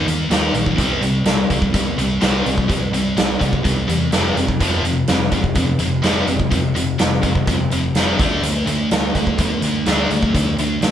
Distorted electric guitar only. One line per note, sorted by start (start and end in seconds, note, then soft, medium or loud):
0.07 0.28 D#3 medium
0.07 0.28 A#3 medium
0.31 0.53 D#3 medium
0.31 0.54 A#3 medium
0.31 0.54 D#4 medium
0.55 0.76 D#3 medium
0.55 0.76 A#3 medium
0.79 1.01 C3 medium
0.79 1.01 G3 medium
0.79 1.02 C4 medium
1.02 1.24 C3 medium
1.02 1.24 G3 medium
1.26 1.48 C3 medium
1.26 1.48 G3 medium
1.50 1.72 C3 medium
1.50 1.72 G3 medium
1.74 1.95 C3 medium
1.74 1.96 G3 medium
1.98 2.19 C3 medium
1.98 2.20 G3 medium
2.21 2.44 C3 medium
2.21 2.44 G3 medium
2.21 2.45 C4 medium
2.45 2.67 C3 medium
2.45 2.67 G3 medium
2.69 2.91 C3 medium
2.69 2.91 G3 medium
2.94 3.15 C3 medium
2.94 3.15 G3 medium
3.17 3.38 C3 medium
3.17 3.39 G3 medium
3.40 3.62 C3 medium
3.40 3.62 G3 medium
3.64 3.86 C3 medium
3.64 3.86 G3 medium
3.88 4.10 C3 medium
3.88 4.10 G3 medium
4.13 4.36 F2 medium
4.13 4.36 C3 medium
4.13 4.36 F3 medium
4.37 4.58 F2 medium
4.37 4.59 C3 medium
4.61 4.83 F2 medium
4.61 4.83 C3 medium
4.61 4.84 F3 medium
4.85 5.06 F2 medium
4.85 5.07 C3 medium
5.09 5.30 F2 medium
5.09 5.30 C3 medium
5.32 5.54 F2 medium
5.32 5.54 C3 medium
5.56 5.78 F2 medium
5.56 5.78 C3 medium
5.80 6.01 F2 medium
5.80 6.02 C3 medium
6.03 6.26 F2 medium
6.03 6.26 C3 medium
6.03 6.26 F3 medium
6.28 6.49 F2 medium
6.28 6.50 C3 medium
6.51 6.73 F2 medium
6.51 6.73 C3 medium
6.75 6.97 F2 medium
6.75 6.97 C3 medium
6.99 7.21 F2 medium
6.99 7.21 C3 medium
7.23 7.45 F2 medium
7.23 7.45 C3 medium
7.48 7.69 F2 medium
7.48 7.69 C3 medium
7.72 7.93 F2 medium
7.72 7.94 C3 medium
7.97 8.19 F2 medium
7.97 8.19 C3 medium
7.97 8.19 F3 medium
8.19 8.42 D3 medium
8.19 8.42 A3 medium
8.19 8.43 D4 medium
8.44 8.65 D3 medium
8.44 8.65 A3 medium
8.66 8.88 D3 medium
8.66 8.89 A3 medium
8.92 9.13 D3 medium
8.92 9.13 A3 medium
9.15 9.37 D3 medium
9.15 9.37 A3 medium
9.39 9.60 D3 medium
9.39 9.61 A3 medium
9.64 9.85 D3 medium
9.64 9.85 A3 medium
9.87 10.09 D3 medium
9.87 10.09 A3 medium
9.87 10.10 D4 medium
10.11 10.32 D3 medium
10.11 10.32 A3 medium
10.34 10.56 D3 medium
10.34 10.56 A3 medium
10.59 10.80 D3 medium
10.59 10.80 A3 medium
10.83 10.91 D3 medium
10.83 10.91 A3 medium